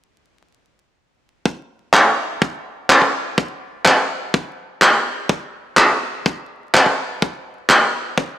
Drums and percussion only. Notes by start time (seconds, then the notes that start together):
1.45 kick
1.94 kick, clap
2.42 kick
2.90 kick, clap
3.02 kick
3.38 kick
3.85 kick, clap
4.34 kick
4.82 kick, clap
5.29 kick
5.77 kick, clap
6.26 kick
6.74 kick, clap
6.86 kick
7.22 kick
7.70 kick, clap
8.18 kick